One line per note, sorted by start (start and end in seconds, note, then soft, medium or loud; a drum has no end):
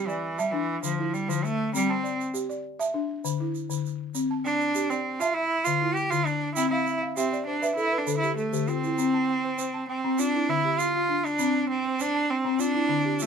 0.00 0.23 G4 medium
0.08 0.40 E3 medium
0.08 0.53 D5 medium
0.08 shaker soft
0.39 0.53 G3 medium
0.39 0.53 E5 medium
0.39 0.69 A5 medium
0.39 shaker soft
0.52 0.83 E3 medium
0.52 0.99 D4 medium
0.83 1.13 D3 medium
0.83 1.15 F3 medium
0.83 shaker medium
0.99 1.43 E4 medium
1.14 1.31 G3 medium
1.14 shaker soft
1.29 1.59 D3 medium
1.29 1.46 F3 medium
1.29 shaker medium
1.44 1.74 A3 loud
1.44 shaker soft
1.73 1.92 G3 medium
1.73 2.04 C4 medium
1.73 shaker medium
1.89 2.20 C4 medium
1.89 2.34 A5 medium
2.03 2.48 D5 medium
2.03 shaker soft
2.21 shaker soft
2.34 2.64 G4 medium
2.34 shaker medium
2.49 2.94 D5 medium
2.49 shaker soft
2.79 2.94 E5 medium
2.79 3.10 A5 medium
2.79 shaker soft
2.94 3.40 D4 medium
3.25 3.55 D3 medium
3.25 shaker medium
3.40 3.85 E4 medium
3.55 shaker soft
3.70 4.00 D3 medium
3.70 shaker medium
3.86 shaker soft
4.15 4.45 C4 medium
4.15 shaker medium
4.31 4.75 A5 medium
4.45 4.91 D4 loud
4.45 4.90 D5 medium
4.45 shaker soft
4.61 shaker soft
4.75 5.05 G4 medium
4.75 shaker medium
4.90 5.22 C4 medium
4.90 5.36 D5 medium
4.90 shaker soft
5.20 5.36 F4 medium
5.20 5.36 E5 medium
5.20 5.51 A5 medium
5.20 shaker medium
5.34 5.66 E4 loud
5.65 5.96 D3 medium
5.65 5.96 F4 medium
5.65 shaker medium
5.82 6.26 E4 medium
5.94 6.12 G4 medium
5.94 shaker soft
6.10 6.42 D3 medium
6.10 6.27 F4 loud
6.10 shaker soft
6.26 6.55 D4 medium
6.26 shaker soft
6.55 6.87 C4 medium
6.55 6.70 E4 medium
6.55 6.85 G5 medium
6.55 shaker medium
6.71 7.00 E4 medium
6.71 7.00 F5 medium
6.86 7.15 E5 medium
6.86 shaker soft
7.02 7.30 F5 medium
7.17 7.45 C4 medium
7.17 7.47 G4 medium
7.17 7.45 E5 medium
7.17 shaker medium
7.33 7.61 D5 medium
7.33 shaker soft
7.46 7.75 D4 medium
7.46 7.75 C5 medium
7.62 7.91 B4 medium
7.62 7.77 E5 medium
7.62 shaker soft
7.76 7.99 E4 loud
7.76 8.05 A4 medium
7.76 shaker soft
7.92 8.21 B4 medium
7.98 8.17 D4 medium
8.07 8.37 D3 medium
8.07 8.35 A4 medium
8.07 shaker medium
8.18 8.36 E4 medium
8.22 8.51 G4 medium
8.22 shaker soft
8.37 8.70 A3 medium
8.37 8.65 A4 medium
8.37 shaker soft
8.53 8.83 D3 medium
8.53 8.81 G4 medium
8.53 shaker medium
8.68 9.88 C4 loud
8.68 8.96 F4 medium
8.68 shaker soft
8.84 9.12 E4 medium
8.84 shaker soft
8.98 9.28 C4 medium
8.98 shaker medium
9.14 9.58 A5 medium
9.28 9.74 G5 medium
9.44 9.57 C5 medium
9.58 9.88 C5 medium
9.58 shaker medium
9.74 10.19 A5 medium
9.89 10.21 C4 medium
9.89 10.35 G5 medium
10.04 10.19 C4 medium
10.19 10.51 D4 loud
10.19 10.65 F4 medium
10.19 shaker medium
10.34 10.79 E4 medium
10.49 10.79 D3 medium
10.49 10.81 E4 medium
10.64 11.09 G4 medium
10.79 10.93 F4 medium
10.79 11.27 F4 medium
10.79 shaker medium
10.95 11.25 F4 medium
11.09 11.55 D4 medium
11.26 11.69 D4 medium
11.26 shaker soft
11.39 11.69 C4 medium
11.39 shaker medium
11.55 12.00 A5 medium
11.70 12.03 C4 medium
11.85 11.98 C5 medium
12.00 12.32 D4 loud
12.00 12.30 C5 medium
12.00 shaker medium
12.15 12.60 A5 medium
12.30 12.61 C4 medium
12.45 12.59 C4 medium
12.59 13.23 D4 loud
12.59 13.05 F4 medium
12.59 shaker medium
12.75 13.20 E4 medium
12.89 13.20 D3 medium
13.05 13.26 G4 medium
13.19 13.26 A3 medium
13.19 13.26 F4 medium
13.19 shaker medium